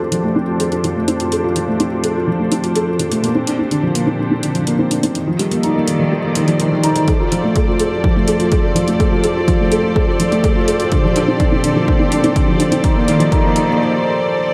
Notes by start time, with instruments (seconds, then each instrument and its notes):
Already playing: string section F2 D4 G4 A4 C5, felt piano A3 C4 A4
0.00 felt piano F4
0.11 felt piano F3, closed hi-hat
0.24 felt piano A3
0.36 felt piano C4
0.47 felt piano F4
0.60 felt piano A4, closed hi-hat
0.72 felt piano F4, closed hi-hat
0.84 felt piano F3, closed hi-hat
0.96 felt piano A3
1.08 felt piano C4, closed hi-hat
1.20 felt piano F4, closed hi-hat
1.32 felt piano A4, closed hi-hat
1.44 felt piano F4
1.56 felt piano F3, closed hi-hat
1.68 felt piano A3
1.80 felt piano C4, closed hi-hat
1.92 felt piano F4
2.04 felt piano A4, closed hi-hat
2.16 felt piano F4
2.27 felt piano F3
2.39 felt piano A3
2.52 felt piano C4, closed hi-hat
2.63 felt piano F4, closed hi-hat
2.76 felt piano A4, closed hi-hat
2.87 felt piano F4
2.99 felt piano F3, closed hi-hat
3.11 felt piano A3, closed hi-hat
3.23 string section A#2, felt piano A#3, closed hi-hat
3.35 felt piano C4
3.47 felt piano D4, closed hi-hat
3.59 felt piano C4
3.71 felt piano D3, closed hi-hat
3.83 felt piano F3
3.95 felt piano A#3, closed hi-hat
4.07 felt piano C4
4.19 felt piano D4
4.31 felt piano C4
4.43 felt piano D3, closed hi-hat
4.55 felt piano F3, closed hi-hat
4.67 felt piano A#3, closed hi-hat
4.79 felt piano C4
4.91 felt piano D4, closed hi-hat
5.03 felt piano C4, closed hi-hat
5.15 felt piano D#3, string section D#3, closed hi-hat
5.27 felt piano F3
5.32 string section A4
5.39 felt piano G3, closed hi-hat
5.47 felt piano A#3, string section G4, closed hi-hat
5.61 felt piano D#4, string section D5, closed hi-hat
5.76 felt piano A#3
5.87 felt piano D#3, closed hi-hat
5.99 felt piano F3, string section C5
6.12 felt piano G3
6.24 felt piano A#3
6.35 felt piano D#3, closed hi-hat
6.48 felt piano F3, closed hi-hat
6.60 felt piano D#3, closed hi-hat
6.72 felt piano D#3
6.84 felt piano D#4, closed hi-hat
6.96 felt piano D#3, closed hi-hat
7.08 string section F2, felt piano A4, kick, closed hi-hat
7.20 felt piano F4
7.32 felt piano F3, closed hi-hat
7.44 felt piano A3
7.56 felt piano A4, kick, closed hi-hat
7.68 felt piano F4
7.80 felt piano A4, closed hi-hat
7.92 felt piano F4
8.04 felt piano F3, kick
8.16 felt piano A3
8.28 felt piano A4, closed hi-hat
8.40 felt piano F4, closed hi-hat
8.52 felt piano A4, kick, closed hi-hat
8.63 felt piano F4
8.75 felt piano F3, closed hi-hat
8.87 felt piano A3, closed hi-hat
8.99 felt piano A4, kick, closed hi-hat
9.12 felt piano F4
9.24 felt piano A4, closed hi-hat
9.36 felt piano F4
9.48 felt piano F3, kick, closed hi-hat
9.60 felt piano A3
9.72 felt piano A4, closed hi-hat
9.83 felt piano F4
9.95 felt piano A4, kick
10.07 felt piano F4
10.20 felt piano F3, closed hi-hat
10.31 felt piano A3, closed hi-hat
10.43 felt piano A4, kick, closed hi-hat
10.56 felt piano F4
10.68 felt piano A4, closed hi-hat
10.80 felt piano F4, closed hi-hat
10.92 string section A#2, felt piano D3, kick, closed hi-hat
11.04 felt piano F3
11.16 felt piano D4, closed hi-hat
11.28 felt piano C4
11.40 felt piano D4, kick, closed hi-hat
11.52 felt piano C4
11.64 felt piano D3, closed hi-hat
11.76 felt piano F3
11.88 felt piano D4, kick
12.00 felt piano C4
12.12 felt piano D4, closed hi-hat
12.24 felt piano C4, closed hi-hat
12.36 felt piano D3, kick, closed hi-hat
12.48 felt piano F3
12.60 felt piano D4, closed hi-hat
12.72 felt piano C4, closed hi-hat
12.84 string section D#3, felt piano D#4, kick, closed hi-hat
12.96 felt piano A#3
13.08 felt piano D#3, closed hi-hat
13.19 felt piano F3, closed hi-hat
13.32 felt piano D#4, kick, closed hi-hat
13.44 felt piano A#3
13.55 felt piano D#4, closed hi-hat
13.68 felt piano A#3